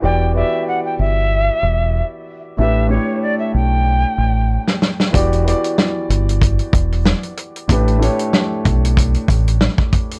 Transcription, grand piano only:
X:1
M:4/4
L:1/8
Q:"Swing 16ths" 1/4=94
K:Edor
V:1 name="Grand piano"
[E,B,FGd] [E,B,FGd]3 z4 | [A,,A,DGB] [A,,A,DGc]3 z4 | [E,B,FGd] [E,B,FGd]3 z4 | [A,,A,DGB] [A,,A,DGc]3 z4 |]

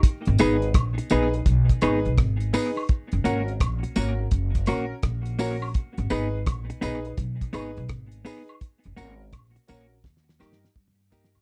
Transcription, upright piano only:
X:1
M:4/4
L:1/16
Q:"Swing 16ths" 1/4=84
K:G#m
V:1 name="Upright piano"
z2 [DGB] z3 [DGB] [GB] z2 [DGB] z3 [DGB] z | z2 [CFA] z3 [CFA] [FA] z2 [CFA] z3 [CFA] z | z2 [DGB] z3 [DGB] [GB] z2 [DGB] z3 [DGB] z | z2 [CFA] z3 [CFA] [FA] z2 [D=GA] z3 [DGA] z |]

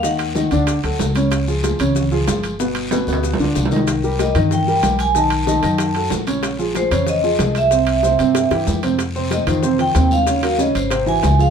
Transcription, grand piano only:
X:1
M:4/4
L:1/8
Q:1/4=188
K:Fm
V:1 name="Grand piano"
[E,Ee]2 [E,Ee] [=D,=D=d]2 [^F,^F=A]2 [_D,_D_d]- | [D,Dd] [F,FA] [F,FA] [D,Dd]2 [F,FA] [F,FA]2 | [=B,,=B,=B]2 [B,,B,B] [B,,B,B]2 [=D,=DF]2 [E,Ee]- | [E,Ee] [G,GB] [G,GB] [E,Ee]2 [G,GB] [G,GB]2 |
[^D,^D^d]2 [D,Dd] [D,Dd]2 [^F,^F=A]2 [^C,^C^c]- | [^C,^C^c] [F,FA] [F,FA] [D,Dd]2 [F,FA] [F,FA]2 | [C,Cc]2 [C,Cc] [C,Cc]2 [=E,=EG]2 [C,Cc] | z [C,Cc]2 [E,EF] [C,Cc] [E,EF] [C,Cc]2 |
[D,Dd] [_G,_GB] [D,Dd]2 [C,Cc] [=E,=EG]2 [F,FA] |]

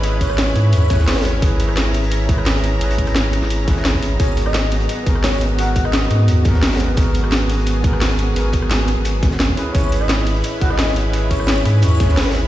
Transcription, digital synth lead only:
X:1
M:4/4
L:1/16
Q:1/4=173
K:C#dor
V:1 name="Digital synth lead"
z2 c4 z2 c6 z2 | z16 | z16 | c2 z d2 z6 z c c z2 |
f2 z d4 z8 z | z16 | z16 | c2 z d2 z4 z f d2 z3 |
z2 c4 z2 c6 z2 |]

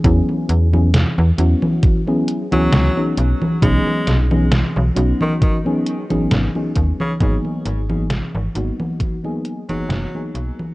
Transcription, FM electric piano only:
X:1
M:4/4
L:1/16
Q:"Swing 16ths" 1/4=67
K:B
V:1 name="FM electric piano"
[F,B,CEG]3 [F,B,CEG] z2 [F,B,CEF]3 [F,B,CEG]2 [F,B,CEG]2 [F,B,CDG]3 | [F,B,CDG]3 [F,B,CDG] z2 [F,B,CDF]3 [F,B,CDG]2 [F,B,CDG]2 [F,B,CDG]3 | [F,A,B,DG]3 [F,A,B,DG] z2 [F,A,B,DF]3 [F,A,B,DG]2 [F,A,B,DG]2 [F,A,B,DG]3 |]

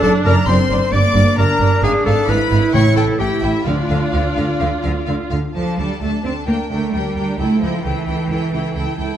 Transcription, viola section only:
X:1
M:4/4
L:1/8
Q:1/4=131
K:Dm
V:1 name="Viola section"
D2 C2 B,2 D2- | D2 E4 E2 | F6- F z | D D D D D D D D |
E E E E E E E E |]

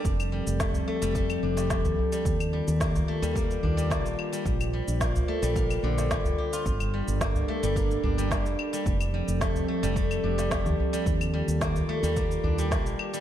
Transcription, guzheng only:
X:1
M:4/4
L:1/16
Q:1/4=109
K:Fmix
V:1 name="Guzheng"
z2 G,2 A, z A, G, A,2 D G, A, z2 G, | z2 G,2 B, z A, G, B,2 D G, B, z2 G, | z2 G,2 B, z A, G, B, z D, G, G, z G F | z2 G,2 B, z A, G, B,2 D G, B, z2 G, |
z2 G,2 A, z A, G, A,2 D G, A, z2 G, | z2 G,2 B, z A, G, B,2 D G, B, z2 G, |]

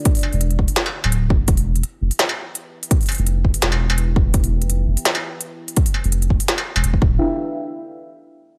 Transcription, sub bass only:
X:1
M:4/4
L:1/16
Q:"Swing 16ths" 1/4=168
K:Ephr
V:1 name="Sub bass" clef=bass
z3 E,,,3 E,,, z4 D,,,3 F,,,2 | E,,,4 z2 F,,, z8 z | z3 F,,,3 F,,, z E,,,8- | E,,,3 F,,,3 F,,, z8 z |
z3 F,,,3 F,,, z4 E,,, E,,,2 D,,,2 | z16 |]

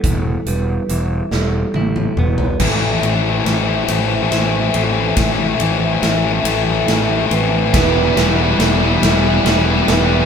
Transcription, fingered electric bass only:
X:1
M:6/8
L:1/8
Q:3/8=47
K:Am
V:1 name="Fingered electric bass" clef=bass
E,,, E,,, E,,, E,,, A,,, E,,, | A,,, A,,, A,,, A,,, A,,, A,,, | A,,, A,,, A,,, A,,, A,,, A,,, | E,,, E,,, E,,, E,,, E,,, E,,, |]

